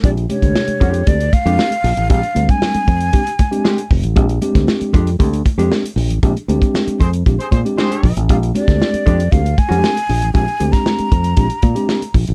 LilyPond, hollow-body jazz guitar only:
\new Staff \with { instrumentName = "Hollow-body jazz guitar" } { \time 4/4 \key bes \mixolydian \tempo 4 = 116 r4. <aes d' g'>8 r8. <aes d' g'>16 r4 | r2. <aes d' g'>16 r8. | r4. <aes d' g'>16 r4 <aes d' g'>16 r4 | r2. <aes d' g'>16 <aes d' g'>16 r8 |
r4. <aes d' g'>16 r4 <aes d' g'>8 r8. | r1 | }